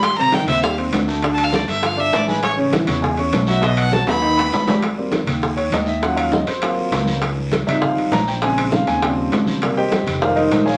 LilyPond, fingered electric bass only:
\new Staff \with { instrumentName = "Fingered electric bass" } { \clef bass \time 4/4 \key a \lydian \tempo 4 = 200 gis,,4. dis,4. d,4~ | d,4. g,,4. a,,4~ | a,,4. e,4. b,,4~ | b,,4. dis,4. gis,,4~ |
\key aes \major gis,,4. ees,4. ees,4~ | ees,4. aes,,4. des,4~ | des,4. aes,,4. bes,,4~ | bes,,4. ees,4. aes,,4~ |
aes,,4. f,,4. bes,,4 | }